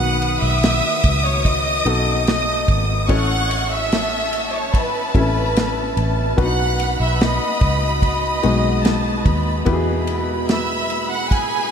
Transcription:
Already playing: fingered electric bass B1, felt piano D#3 B3 F#4 B4, violin section F#5 D#6 F#6
0.22 ride
0.42 fingered electric bass B1, violin section E5 E6
0.63 snare, ride
1.04 fingered electric bass C#2, kick, ride
1.25 violin section C#5 C#6
1.45 violin section D#5 D#6, kick, ride
1.85 fingered electric bass B1, felt piano B3 D#4 F#4 A4, ride
2.27 violin section D#5 D#6, snare, ride
2.68 fingered electric bass G#1, kick, ride
3.08 fingered electric bass A1, felt piano C#4 E4 A4 C#5, violin section F#5 C#6 F#6, kick, ride
3.51 ride
3.72 violin section E5 E6
3.92 violin section A5, snare, ride
4.33 ride
4.54 violin section C#5 C#6
4.74 violin section B4 B5, kick, ride
5.14 fingered electric bass A1, felt piano C#4 E4 A4 E5, violin section B4 B5, kick, ride
5.56 snare, ride
5.97 fingered electric bass A1, ride
6.37 fingered electric bass B1, felt piano B3 D4 F#4 B4, violin section F#5 B5 F#6, kick, ride
6.43 felt piano D#4
6.80 ride
7.00 fingered electric bass B1, violin section E5 E6
7.21 violin section D#5 D#6, snare, ride
7.61 fingered electric bass C#2, kick, ride
8.02 violin section D#5 D#6, kick, ride
8.43 fingered electric bass B1, felt piano G#3 B3 D#4 F#4, ride
8.83 violin section A5, snare, ride
9.25 fingered electric bass D#2, violin section B5, kick, ride
9.65 fingered electric bass E2, felt piano B2 B3 E4 G4 B4, violin section B5, kick, ride
9.73 felt piano G#4
10.07 ride
10.49 violin section E5 E6, snare, ride
10.90 ride
11.11 violin section F#5 F#6
11.31 violin section G#4 G#5, kick, ride

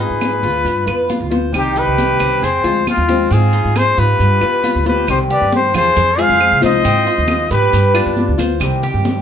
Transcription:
Already playing: nylon-string guitar G#3 C4 F4
0.00 cuban tres D#4, flute G#4, trumpet B4, high conga
0.10 upright bass G#2
0.21 high conga, claves, maracas
0.43 upright bass D2, cuban tres F4, high conga, maracas
0.65 upright bass G2, muted nylon-string guitar stroke, high conga, maracas
0.86 upright bass F2, nylon-string guitar B3 F4, cuban tres B4, high conga, claves, maracas
1.08 nylon-string guitar G3 B3 F4, cuban tres F4, high conga, maracas
1.20 upright bass D2
1.31 nylon-string guitar B3 F4, cuban tres C5, high conga, maracas
1.52 upright bass C2, nylon-string guitar C3 D#3 G3 C4 G4, flute D#4, high conga, claves, maracas
1.56 trumpet G4
1.76 cuban tres D#4, flute G4, trumpet B4, high conga, maracas
1.87 upright bass C2
1.98 high conga, maracas
2.20 upright bass C2, cuban tres C4, high conga, claves, maracas
2.42 upright bass F2, flute G#4, trumpet C5, muted nylon-string guitar stroke, high conga, maracas
2.64 upright bass D2, nylon-string guitar F3 G#3 C4 F4, cuban tres F4, high conga, maracas
2.86 nylon-string guitar F3 G#3 C4 F4, flute C4, trumpet F4, high conga, claves, maracas
2.97 upright bass D#2
3.09 nylon-string guitar F3 G#3 C4 F4, cuban tres C4, high conga, maracas
3.31 upright bass G#2, nylon-string guitar G#3 C4 F4, cuban tres C4, flute F4, trumpet G#4, high conga, maracas
3.53 cuban tres D#4, high conga, maracas
3.65 upright bass G#2
3.76 flute G#4, trumpet C5, high conga, claves, maracas
3.98 upright bass G#2, cuban tres F4, flute G4, trumpet B4, high conga, maracas
4.19 upright bass G2, muted nylon-string guitar stroke, high conga, maracas
4.41 upright bass F2, nylon-string guitar B3 F4, cuban tres B4, high conga, claves, maracas
4.63 nylon-string guitar G3 B3 F4, cuban tres F4, high conga, maracas
4.75 upright bass D2
4.86 nylon-string guitar B3 F4, flute G4, trumpet B4, cuban tres C5, high conga, maracas
5.07 upright bass C2, nylon-string guitar C3 D#3 G3 C4 G4, flute G4, trumpet C5, high conga, claves, maracas
5.30 cuban tres G4, flute B4, trumpet D5, high conga, maracas
5.41 upright bass G2
5.52 flute G4, trumpet C5, high conga, maracas
5.74 upright bass E2, cuban tres F4, flute G#4, trumpet C5, high conga, low conga, claves, maracas
5.96 upright bass F2, cuban tres C5, muted nylon-string guitar stroke, high conga, low conga, maracas
6.18 nylon-string guitar F3 G#3 C4 F4, cuban tres G#4, flute C5, trumpet F5, high conga, maracas
6.29 upright bass F2
6.40 nylon-string guitar F3 G#3 C4 F4, high conga, claves, maracas
6.51 upright bass C2
6.61 upright bass C2, nylon-string guitar F3 G#3 C4 F4, cuban tres D#4, flute C5, trumpet D#5, high conga, maracas
6.83 upright bass G#2, nylon-string guitar G#3 C4 F4, cuban tres C4, high conga, maracas
7.06 cuban tres F4, high conga, maracas
7.18 upright bass D#2
7.28 high conga, claves, maracas
7.50 upright bass G#2, flute G4, cuban tres B4, trumpet B4, high conga, maracas
7.72 upright bass G2, muted nylon-string guitar stroke, high conga, maracas
7.94 nylon-string guitar B3 F4, cuban tres D4, high conga, claves, maracas
8.06 upright bass G2
8.16 nylon-string guitar G3 B3 F4, high conga, maracas
8.28 upright bass D2
8.38 upright bass D2, nylon-string guitar B3 F4, cuban tres C5, high conga, maracas
8.59 upright bass C2, nylon-string guitar C3 D#3 G3 C4 G4, high conga, claves, maracas
8.83 cuban tres G4, high conga, maracas
8.94 upright bass G2
9.05 high conga, maracas

